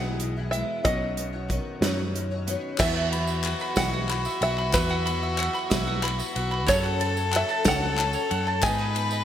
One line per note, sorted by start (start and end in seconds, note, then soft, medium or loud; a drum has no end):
0.00 0.62 B1 medium
0.00 0.81 E2 medium
0.00 0.85 E2 medium
0.00 0.80 E3 medium
0.00 0.84 F#3 medium
0.00 0.52 G#3 medium
0.00 0.86 B3 medium
0.00 1.17 B3 medium
0.00 0.35 E4 medium
0.00 0.85 F#4 medium
0.00 0.86 G#4 medium
0.00 0.87 E5 medium
0.00 0.51 F#5 medium
0.04 0.37 F#3 soft
0.04 0.37 G#3 soft
0.04 0.36 B3 soft
0.20 0.81 B2 medium
0.20 closed hi-hat medium
0.37 0.50 F#3 soft
0.37 0.51 G#3 soft
0.37 0.51 B3 medium
0.37 0.52 E4 soft
0.51 0.83 F#3 medium
0.51 0.84 G#3 medium
0.51 0.81 G#3 medium
0.51 0.83 B3 medium
0.51 0.85 E4 medium
0.51 0.82 E5 medium
0.51 closed hi-hat medium
0.84 2.75 B1 medium
0.84 1.59 B1 medium
0.84 2.75 B2 medium
0.84 1.50 B2 medium
0.84 1.55 F#3 medium
0.84 1.00 B3 medium
0.84 1.55 C#4 medium
0.84 1.01 D#4 medium
0.84 1.01 F#4 medium
0.84 2.76 F#4 medium
0.84 1.55 B4 medium
0.84 0.99 C#5 medium
0.84 2.43 D#5 medium
0.84 1.56 D#5 medium
0.84 kick loud
0.84 closed hi-hat medium
1.00 1.34 D#4 soft
1.00 1.33 F#4 soft
1.00 1.31 C#5 soft
1.17 2.46 B3 medium
1.17 closed hi-hat medium
1.32 1.48 D#4 soft
1.32 1.49 F#4 soft
1.32 1.49 C#5 soft
1.48 2.75 D#3 medium
1.48 1.81 B3 medium
1.48 1.81 D#4 medium
1.48 1.82 F#4 medium
1.48 1.82 C#5 medium
1.48 kick medium
1.48 closed hi-hat medium
1.81 2.55 F#2 medium
1.81 2.52 F#3 medium
1.81 1.98 B3 medium
1.81 2.52 C#4 medium
1.81 2.75 C#4 medium
1.81 1.98 D#4 medium
1.81 1.98 F#4 medium
1.81 2.52 B4 medium
1.81 2.53 C#5 medium
1.81 1.96 C#5 medium
1.81 snare loud
1.81 closed hi-hat medium
1.97 2.31 D#4 soft
1.97 2.30 F#4 medium
1.97 2.30 C#5 medium
2.14 2.75 F#2 medium
2.14 closed hi-hat medium
2.31 2.47 D#4 soft
2.31 2.47 F#4 medium
2.31 2.47 C#5 medium
2.47 2.75 B3 medium
2.47 2.79 B3 medium
2.47 2.80 D#4 medium
2.47 2.80 F#4 medium
2.47 2.80 C#5 medium
2.47 closed hi-hat medium
2.78 4.70 E2 medium
2.78 3.53 E2 medium
2.78 3.12 E2 medium
2.78 3.12 E3 medium
2.78 3.49 F#3 medium
2.78 3.12 F#3 medium
2.78 3.12 B3 medium
2.78 3.50 E4 medium
2.78 6.69 F#4 medium
2.78 3.12 F#4 medium
2.78 3.50 B4 medium
2.78 3.11 B4 medium
2.78 3.40 E5 loud
2.78 3.44 E5 medium
2.78 3.50 E5 medium
2.78 kick loud
2.78 clap medium
2.78 crash loud
2.78 tambourine medium
2.95 3.44 F#5 medium
2.95 clap soft
2.95 tambourine soft
3.12 3.43 F#3 soft
3.12 3.45 B3 soft
3.12 3.45 F#4 soft
3.12 3.44 B4 soft
3.12 3.60 B5 medium
3.12 ride medium
3.27 tambourine medium
3.44 3.76 F#3 medium
3.44 3.76 B3 medium
3.44 3.76 F#4 medium
3.44 3.75 B4 medium
3.44 3.92 F#5 medium
3.44 clap medium
3.44 ride medium
3.44 tambourine soft
3.60 4.08 B5 medium
3.60 clap soft
3.60 tambourine soft
3.76 4.26 B1 medium
3.76 4.09 E2 medium
3.76 4.09 E3 medium
3.76 4.46 F#3 medium
3.76 4.07 F#3 medium
3.76 4.08 B3 medium
3.76 4.47 E4 medium
3.76 4.09 F#4 medium
3.76 4.09 B4 medium
3.76 4.47 B4 medium
3.76 4.47 D#5 medium
3.76 4.37 F#5 loud
3.76 kick medium
3.76 snare loud
3.76 ride medium
3.76 tambourine medium
3.93 4.40 F#5 medium
4.08 4.41 F#3 medium
4.08 4.41 B3 medium
4.08 4.41 F#4 medium
4.08 4.41 B4 medium
4.08 4.57 B5 medium
4.08 clap medium
4.08 ride medium
4.25 4.72 E5 medium
4.25 tambourine medium
4.41 4.74 B1 medium
4.41 4.74 F#3 soft
4.41 4.74 B3 soft
4.41 4.74 F#4 soft
4.41 4.74 B4 medium
4.41 4.75 E5 medium
4.41 4.89 F#5 medium
4.41 ride medium
4.58 5.05 B5 medium
4.58 clap soft
4.73 6.64 E2 medium
4.73 5.48 E2 medium
4.73 5.06 E2 medium
4.73 5.06 E3 medium
4.73 5.44 F#3 medium
4.73 5.07 F#3 medium
4.73 5.07 B3 medium
4.73 5.44 E4 medium
4.73 5.07 F#4 medium
4.73 5.67 B4 medium
4.73 5.44 B4 medium
4.73 5.06 B4 medium
4.73 5.22 E5 medium
4.73 5.45 E5 medium
4.73 kick loud
4.73 clap medium
4.73 ride medium
4.73 tambourine medium
4.90 5.37 F#5 medium
4.90 clap soft
5.06 5.38 F#3 soft
5.06 5.39 B3 soft
5.06 5.39 F#4 soft
5.06 5.39 B4 soft
5.06 5.53 B5 medium
5.06 ride medium
5.23 5.69 E5 medium
5.38 5.71 F#3 medium
5.38 5.71 B3 medium
5.38 5.71 F#4 medium
5.38 5.71 B4 medium
5.38 5.86 F#5 medium
5.38 clap medium
5.38 ride medium
5.38 tambourine soft
5.54 6.02 B5 medium
5.54 clap soft
5.54 tambourine soft
5.70 6.20 B1 medium
5.70 6.04 E2 medium
5.70 6.04 E3 medium
5.70 6.41 F#3 medium
5.70 6.03 F#3 medium
5.70 6.03 B3 medium
5.70 6.41 E4 medium
5.70 6.04 F#4 medium
5.70 6.41 B4 medium
5.70 6.04 B4 medium
5.70 6.17 E5 medium
5.70 6.42 E5 medium
5.70 kick medium
5.70 snare loud
5.70 ride medium
5.70 tambourine loud
5.87 6.34 F#5 medium
6.03 6.36 F#3 medium
6.03 6.36 B3 medium
6.03 6.36 F#4 medium
6.03 6.34 B4 medium
6.03 6.50 B5 medium
6.03 clap loud
6.03 ride medium
6.19 6.67 E5 medium
6.19 tambourine medium
6.35 6.69 B1 loud
6.35 6.67 F#3 soft
6.35 6.68 B3 medium
6.35 6.67 F#4 medium
6.35 6.68 B4 medium
6.35 6.67 F#5 medium
6.35 ride medium
6.51 6.68 B5 medium
6.51 clap soft
6.67 8.59 F#1 medium
6.67 8.59 F#2 medium
6.67 7.42 F#2 medium
6.67 7.38 F#3 medium
6.67 7.00 F#3 medium
6.67 7.38 C#4 medium
6.67 7.00 C#4 medium
6.67 7.00 F#4 medium
6.67 8.66 A4 loud
6.67 7.39 A4 medium
6.67 6.99 A4 medium
6.67 7.32 C#5 medium
6.67 7.35 C#5 medium
6.67 7.39 C#5 medium
6.67 kick loud
6.67 clap loud
6.67 ride medium
6.67 tambourine loud
6.83 7.31 F#5 medium
6.83 clap soft
7.00 7.32 C#4 soft
7.00 7.32 F#4 soft
7.00 7.33 A4 soft
7.00 7.48 A5 medium
7.00 ride medium
7.17 tambourine medium
7.32 7.64 F#3 medium
7.32 7.64 C#4 medium
7.32 7.64 F#4 medium
7.32 7.63 A4 medium
7.32 7.81 F#5 medium
7.32 clap loud
7.32 ride medium
7.32 tambourine soft
7.36 7.67 E5 medium
7.49 7.97 A5 medium
7.49 clap soft
7.49 tambourine soft
7.64 8.15 C#2 loud
7.64 8.35 F#3 medium
7.64 7.95 F#3 medium
7.64 7.96 C#4 medium
7.64 8.36 C#4 medium
7.64 7.97 F#4 medium
7.64 7.97 A4 medium
7.64 8.36 A4 medium
7.64 8.13 C#5 medium
7.64 8.36 C#5 medium
7.64 8.27 F#5 loud
7.64 kick medium
7.64 snare loud
7.64 ride medium
7.64 tambourine loud
7.82 8.29 F#5 medium
7.96 8.29 F#3 medium
7.96 8.30 C#4 medium
7.96 8.30 F#4 medium
7.96 8.29 A4 medium
7.96 8.46 A5 medium
7.96 clap medium
7.96 ride medium
8.13 8.63 C#5 medium
8.13 tambourine medium
8.30 8.63 F#2 loud
8.30 8.63 C#4 soft
8.30 8.63 F#4 medium
8.30 8.63 A4 medium
8.30 8.62 F#5 medium
8.30 ride medium
8.47 8.63 A5 medium
8.47 clap soft
8.62 9.24 G#1 medium
8.62 8.95 G#2 medium
8.62 9.24 G#2 medium
8.62 8.95 D#3 medium
8.62 8.95 G#3 medium
8.62 9.24 B3 medium
8.62 8.95 B3 medium
8.62 9.24 D#4 medium
8.62 8.95 D#4 medium
8.62 9.24 G#4 medium
8.62 8.94 B4 medium
8.62 9.24 B4 loud
8.62 9.11 D#5 medium
8.62 9.24 D#5 medium
8.62 9.23 G#5 loud
8.62 kick loud
8.62 clap loud
8.62 ride medium
8.62 tambourine medium
8.79 9.24 G#5 medium
8.79 clap soft
8.95 9.24 G#3 soft
8.95 9.24 B3 soft
8.95 9.24 D#4 soft
8.95 9.24 B4 medium
8.95 9.24 B5 medium
8.95 clap soft
8.95 ride medium
9.11 9.24 D#5 medium
9.11 tambourine medium